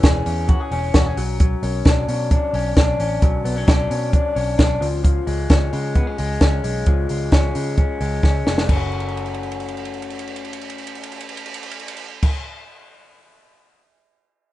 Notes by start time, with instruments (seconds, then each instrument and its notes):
Already playing: clean electric guitar E3 C#4
0.03 picked electric bass E1, clean electric guitar G#4, kick, snare, closed hi-hat
0.26 picked electric bass E2, clean electric guitar C#4, open hi-hat
0.49 clean electric guitar F#4, kick, closed hi-hat
0.60 clean electric guitar G#4
0.71 picked electric bass E1, clean electric guitar C#4, open hi-hat
0.94 picked electric bass E1, clean electric guitar F#4, kick, snare, closed hi-hat
1.06 clean electric guitar G#4
1.17 picked electric bass B1, clean electric guitar F#3, open hi-hat
1.40 clean electric guitar F#3, kick, closed hi-hat
1.63 picked electric bass B1, clean electric guitar C#4, open hi-hat
1.85 picked electric bass B1, clean electric guitar D4, kick, snare, closed hi-hat
2.08 picked electric bass B2, clean electric guitar C#4, open hi-hat
2.31 clean electric guitar D4, kick, closed hi-hat
2.53 picked electric bass B1, clean electric guitar C#4, open hi-hat
2.76 picked electric bass B1, clean electric guitar D4, kick, snare, closed hi-hat
2.99 picked electric bass A1, clean electric guitar C#4, open hi-hat
3.22 picked electric bass B1, clean electric guitar F#3, kick, closed hi-hat
3.44 picked electric bass B1, clean electric guitar B3, open hi-hat
3.56 clean electric guitar C#4
3.67 picked electric bass B1, clean electric guitar D4, kick, snare, closed hi-hat
3.90 picked electric bass B2, clean electric guitar C#4, open hi-hat
4.13 clean electric guitar D4, kick, closed hi-hat
4.35 picked electric bass B1, clean electric guitar C#4, open hi-hat
4.58 picked electric bass B1, clean electric guitar D4, kick, snare, closed hi-hat
4.81 picked electric bass C#2, clean electric guitar F3, open hi-hat
5.04 clean electric guitar F3, kick, closed hi-hat
5.27 picked electric bass C#2, clean electric guitar G#3, open hi-hat
5.50 picked electric bass C#2, clean electric guitar C#4, kick, snare, closed hi-hat
5.72 picked electric bass C#3, clean electric guitar G#3, open hi-hat
5.95 clean electric guitar B3, kick, closed hi-hat
6.07 clean electric guitar C#4
6.18 picked electric bass C#2, clean electric guitar G#3, open hi-hat
6.41 picked electric bass C#2, clean electric guitar C#4, kick, snare, closed hi-hat
6.64 picked electric bass B1, clean electric guitar G#3, open hi-hat
6.86 picked electric bass C#2, clean electric guitar F3, kick, closed hi-hat
7.09 picked electric bass C#2, clean electric guitar G#3, open hi-hat
7.32 picked electric bass C#2, clean electric guitar C#4, kick, snare, closed hi-hat
7.55 picked electric bass C#3, clean electric guitar G#3, open hi-hat
7.78 clean electric guitar C#4, kick, closed hi-hat
8.01 picked electric bass C#2, clean electric guitar G#3, open hi-hat
8.23 picked electric bass C#2, clean electric guitar C#4, kick, snare
8.46 picked electric bass F1, clean electric guitar G#3, snare
8.58 snare
8.66 picked electric bass F#1, clean electric guitar A3, kick, crash
8.72 clean electric guitar C#4
8.76 clean electric guitar F#4
8.92 crash
9.00 ride
9.08 crash
9.17 ride
9.26 crash
9.34 ride
9.43 crash
9.52 ride
9.60 crash
9.68 ride
9.77 crash
9.85 ride
9.94 crash
10.02 ride
10.10 crash
10.19 ride
10.27 crash
10.36 ride
10.45 crash
10.53 ride
10.61 crash
10.70 ride
10.78 crash
10.87 ride
10.95 crash
11.03 ride
11.12 crash
11.21 ride
11.29 crash
11.37 ride
11.46 crash
11.54 ride
11.63 crash
11.71 ride
11.80 crash
11.88 ride
11.97 crash
12.23 kick, crash